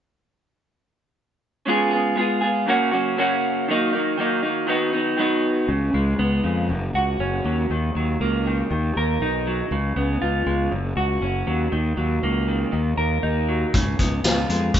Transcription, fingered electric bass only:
0, 0, Header, 1, 2, 480
1, 0, Start_track
1, 0, Tempo, 502934
1, 1588, Time_signature, 4, 2, 24, 8
1, 14123, End_track
2, 0, Start_track
2, 0, Title_t, "Fingered electric bass"
2, 0, Program_c, 0, 33
2, 5426, Note_on_c, 0, 37, 87
2, 5621, Note_off_c, 0, 37, 0
2, 5666, Note_on_c, 0, 37, 75
2, 5861, Note_off_c, 0, 37, 0
2, 5910, Note_on_c, 0, 37, 82
2, 6103, Note_off_c, 0, 37, 0
2, 6146, Note_on_c, 0, 41, 82
2, 6386, Note_on_c, 0, 30, 85
2, 6400, Note_off_c, 0, 41, 0
2, 6581, Note_off_c, 0, 30, 0
2, 6625, Note_on_c, 0, 37, 78
2, 6820, Note_off_c, 0, 37, 0
2, 6863, Note_on_c, 0, 30, 79
2, 7059, Note_off_c, 0, 30, 0
2, 7105, Note_on_c, 0, 39, 81
2, 7300, Note_off_c, 0, 39, 0
2, 7347, Note_on_c, 0, 39, 85
2, 7541, Note_off_c, 0, 39, 0
2, 7590, Note_on_c, 0, 39, 74
2, 7783, Note_off_c, 0, 39, 0
2, 7830, Note_on_c, 0, 37, 84
2, 8215, Note_off_c, 0, 37, 0
2, 8309, Note_on_c, 0, 39, 91
2, 8503, Note_off_c, 0, 39, 0
2, 8556, Note_on_c, 0, 39, 77
2, 8746, Note_off_c, 0, 39, 0
2, 8785, Note_on_c, 0, 35, 81
2, 9172, Note_off_c, 0, 35, 0
2, 9267, Note_on_c, 0, 37, 85
2, 9461, Note_off_c, 0, 37, 0
2, 9506, Note_on_c, 0, 37, 80
2, 9701, Note_off_c, 0, 37, 0
2, 9756, Note_on_c, 0, 37, 81
2, 9947, Note_off_c, 0, 37, 0
2, 9987, Note_on_c, 0, 37, 84
2, 10181, Note_off_c, 0, 37, 0
2, 10232, Note_on_c, 0, 30, 83
2, 10424, Note_off_c, 0, 30, 0
2, 10465, Note_on_c, 0, 37, 84
2, 10660, Note_off_c, 0, 37, 0
2, 10700, Note_on_c, 0, 30, 83
2, 10897, Note_off_c, 0, 30, 0
2, 10943, Note_on_c, 0, 39, 76
2, 11139, Note_off_c, 0, 39, 0
2, 11189, Note_on_c, 0, 39, 89
2, 11382, Note_off_c, 0, 39, 0
2, 11426, Note_on_c, 0, 39, 81
2, 11620, Note_off_c, 0, 39, 0
2, 11670, Note_on_c, 0, 37, 80
2, 12054, Note_off_c, 0, 37, 0
2, 12149, Note_on_c, 0, 39, 83
2, 12342, Note_off_c, 0, 39, 0
2, 12384, Note_on_c, 0, 39, 79
2, 12579, Note_off_c, 0, 39, 0
2, 12627, Note_on_c, 0, 39, 81
2, 13013, Note_off_c, 0, 39, 0
2, 13115, Note_on_c, 0, 37, 83
2, 13305, Note_off_c, 0, 37, 0
2, 13352, Note_on_c, 0, 37, 76
2, 13543, Note_off_c, 0, 37, 0
2, 13589, Note_on_c, 0, 37, 79
2, 13782, Note_off_c, 0, 37, 0
2, 13830, Note_on_c, 0, 41, 85
2, 14022, Note_off_c, 0, 41, 0
2, 14070, Note_on_c, 0, 30, 86
2, 14123, Note_off_c, 0, 30, 0
2, 14123, End_track
0, 0, End_of_file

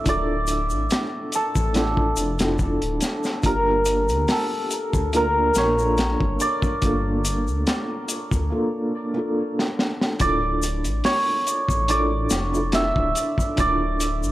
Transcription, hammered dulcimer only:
0, 0, Header, 1, 2, 480
1, 0, Start_track
1, 0, Key_signature, -1, "minor"
1, 0, Tempo, 845070
1, 33, Time_signature, 4, 2, 24, 8
1, 8133, End_track
2, 0, Start_track
2, 0, Title_t, "Hammered dulcimer"
2, 0, Program_c, 0, 15
2, 0, Note_on_c, 0, 76, 96
2, 50, Note_on_c, 0, 74, 103
2, 769, Note_on_c, 0, 69, 81
2, 870, Note_off_c, 0, 76, 0
2, 1448, Note_off_c, 0, 74, 0
2, 1964, Note_on_c, 0, 70, 92
2, 1998, Note_off_c, 0, 69, 0
2, 2450, Note_on_c, 0, 69, 76
2, 2484, Note_off_c, 0, 70, 0
2, 2934, Note_on_c, 0, 70, 93
2, 2968, Note_off_c, 0, 69, 0
2, 3169, Note_on_c, 0, 73, 106
2, 3643, Note_on_c, 0, 74, 99
2, 3677, Note_off_c, 0, 73, 0
2, 4540, Note_off_c, 0, 70, 0
2, 5042, Note_off_c, 0, 74, 0
2, 5799, Note_on_c, 0, 74, 106
2, 6276, Note_on_c, 0, 73, 95
2, 6310, Note_off_c, 0, 74, 0
2, 6758, Note_on_c, 0, 74, 99
2, 6793, Note_off_c, 0, 73, 0
2, 7239, Note_on_c, 0, 76, 102
2, 7720, Note_off_c, 0, 74, 0
2, 7723, Note_on_c, 0, 74, 105
2, 8133, Note_off_c, 0, 74, 0
2, 8133, Note_off_c, 0, 76, 0
2, 8133, End_track
0, 0, End_of_file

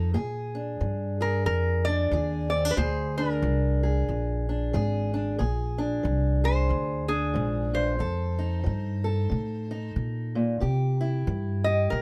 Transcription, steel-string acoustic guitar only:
0, 0, Header, 1, 2, 480
1, 0, Start_track
1, 0, Tempo, 654308
1, 106, Time_signature, 4, 2, 24, 8
1, 8816, End_track
2, 0, Start_track
2, 0, Title_t, "Steel-string acoustic guitar"
2, 0, Program_c, 0, 25
2, 0, Note_on_c, 0, 63, 46
2, 0, Note_on_c, 0, 69, 59
2, 82, Note_off_c, 0, 63, 0
2, 84, Note_off_c, 0, 69, 0
2, 101, Note_on_c, 0, 46, 60
2, 105, Note_on_c, 0, 68, 66
2, 402, Note_on_c, 0, 62, 45
2, 546, Note_off_c, 0, 46, 0
2, 591, Note_on_c, 0, 53, 53
2, 882, Note_off_c, 0, 68, 0
2, 885, Note_on_c, 0, 68, 55
2, 1031, Note_off_c, 0, 53, 0
2, 1072, Note_on_c, 0, 41, 55
2, 1373, Note_off_c, 0, 62, 0
2, 1376, Note_on_c, 0, 62, 52
2, 1512, Note_off_c, 0, 41, 0
2, 1558, Note_on_c, 0, 53, 57
2, 1561, Note_off_c, 0, 68, 0
2, 1564, Note_on_c, 0, 68, 61
2, 1843, Note_off_c, 0, 62, 0
2, 1846, Note_on_c, 0, 60, 51
2, 1943, Note_off_c, 0, 60, 0
2, 1943, Note_on_c, 0, 62, 47
2, 1996, Note_off_c, 0, 53, 0
2, 2034, Note_off_c, 0, 62, 0
2, 2034, Note_on_c, 0, 46, 64
2, 2035, Note_off_c, 0, 68, 0
2, 2038, Note_on_c, 0, 68, 62
2, 2337, Note_on_c, 0, 62, 55
2, 2474, Note_off_c, 0, 46, 0
2, 2517, Note_on_c, 0, 53, 55
2, 2809, Note_off_c, 0, 68, 0
2, 2812, Note_on_c, 0, 68, 54
2, 2956, Note_off_c, 0, 53, 0
2, 3002, Note_on_c, 0, 41, 62
2, 3285, Note_off_c, 0, 62, 0
2, 3293, Note_on_c, 0, 62, 47
2, 3438, Note_off_c, 0, 41, 0
2, 3468, Note_off_c, 0, 68, 0
2, 3472, Note_on_c, 0, 53, 69
2, 3477, Note_on_c, 0, 68, 61
2, 3760, Note_off_c, 0, 62, 0
2, 3768, Note_on_c, 0, 62, 58
2, 3914, Note_off_c, 0, 53, 0
2, 3931, Note_off_c, 0, 68, 0
2, 3932, Note_off_c, 0, 62, 0
2, 3951, Note_on_c, 0, 46, 66
2, 3954, Note_on_c, 0, 68, 64
2, 4243, Note_on_c, 0, 62, 54
2, 4393, Note_off_c, 0, 46, 0
2, 4425, Note_on_c, 0, 53, 56
2, 4715, Note_off_c, 0, 68, 0
2, 4724, Note_on_c, 0, 68, 59
2, 4870, Note_off_c, 0, 53, 0
2, 4909, Note_on_c, 0, 41, 59
2, 5189, Note_off_c, 0, 62, 0
2, 5198, Note_on_c, 0, 62, 56
2, 5352, Note_off_c, 0, 41, 0
2, 5383, Note_on_c, 0, 44, 58
2, 5672, Note_off_c, 0, 44, 0
2, 5675, Note_on_c, 0, 43, 55
2, 5847, Note_off_c, 0, 62, 0
2, 5850, Note_off_c, 0, 68, 0
2, 5857, Note_off_c, 0, 43, 0
2, 5860, Note_on_c, 0, 41, 64
2, 5869, Note_on_c, 0, 69, 66
2, 6152, Note_on_c, 0, 63, 48
2, 6307, Note_off_c, 0, 41, 0
2, 6335, Note_on_c, 0, 53, 55
2, 6624, Note_off_c, 0, 69, 0
2, 6633, Note_on_c, 0, 69, 58
2, 6785, Note_off_c, 0, 53, 0
2, 6819, Note_on_c, 0, 48, 63
2, 7113, Note_off_c, 0, 63, 0
2, 7122, Note_on_c, 0, 63, 52
2, 7267, Note_off_c, 0, 48, 0
2, 7595, Note_on_c, 0, 46, 57
2, 7764, Note_off_c, 0, 69, 0
2, 7768, Note_off_c, 0, 63, 0
2, 7776, Note_off_c, 0, 46, 0
2, 7779, Note_on_c, 0, 48, 61
2, 7785, Note_on_c, 0, 67, 54
2, 8074, Note_on_c, 0, 64, 49
2, 8226, Note_off_c, 0, 48, 0
2, 8269, Note_on_c, 0, 52, 52
2, 8552, Note_off_c, 0, 67, 0
2, 8555, Note_on_c, 0, 67, 54
2, 8710, Note_off_c, 0, 52, 0
2, 8744, Note_on_c, 0, 43, 59
2, 8816, Note_off_c, 0, 43, 0
2, 8816, Note_off_c, 0, 64, 0
2, 8816, Note_off_c, 0, 67, 0
2, 8816, End_track
0, 0, End_of_file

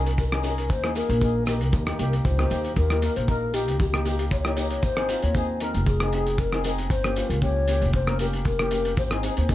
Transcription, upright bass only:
0, 0, Header, 1, 2, 480
1, 0, Start_track
1, 0, Key_signature, -4, "major"
1, 0, Tempo, 517241
1, 647, Time_signature, 4, 2, 24, 8
1, 8861, End_track
2, 0, Start_track
2, 0, Title_t, "Upright bass"
2, 0, Program_c, 0, 32
2, 0, Note_on_c, 0, 36, 100
2, 649, Note_off_c, 0, 36, 0
2, 649, Note_on_c, 0, 39, 91
2, 930, Note_off_c, 0, 39, 0
2, 1014, Note_on_c, 0, 34, 89
2, 1493, Note_off_c, 0, 34, 0
2, 1493, Note_on_c, 0, 36, 89
2, 1579, Note_off_c, 0, 36, 0
2, 1605, Note_on_c, 0, 39, 98
2, 1789, Note_off_c, 0, 39, 0
2, 1850, Note_on_c, 0, 36, 84
2, 2065, Note_off_c, 0, 36, 0
2, 2088, Note_on_c, 0, 37, 77
2, 2303, Note_off_c, 0, 37, 0
2, 2329, Note_on_c, 0, 39, 82
2, 2544, Note_off_c, 0, 39, 0
2, 2566, Note_on_c, 0, 39, 90
2, 2848, Note_off_c, 0, 39, 0
2, 2939, Note_on_c, 0, 34, 73
2, 3415, Note_off_c, 0, 34, 0
2, 3415, Note_on_c, 0, 37, 88
2, 4479, Note_off_c, 0, 37, 0
2, 4479, Note_on_c, 0, 32, 98
2, 4764, Note_off_c, 0, 32, 0
2, 4855, Note_on_c, 0, 39, 76
2, 5330, Note_on_c, 0, 29, 87
2, 5344, Note_off_c, 0, 39, 0
2, 6402, Note_off_c, 0, 29, 0
2, 6402, Note_on_c, 0, 31, 85
2, 6685, Note_off_c, 0, 31, 0
2, 6771, Note_on_c, 0, 37, 83
2, 7254, Note_on_c, 0, 29, 89
2, 7268, Note_off_c, 0, 37, 0
2, 8328, Note_off_c, 0, 29, 0
2, 8328, Note_on_c, 0, 32, 89
2, 8610, Note_off_c, 0, 32, 0
2, 8702, Note_on_c, 0, 39, 78
2, 8861, Note_off_c, 0, 39, 0
2, 8861, End_track
0, 0, End_of_file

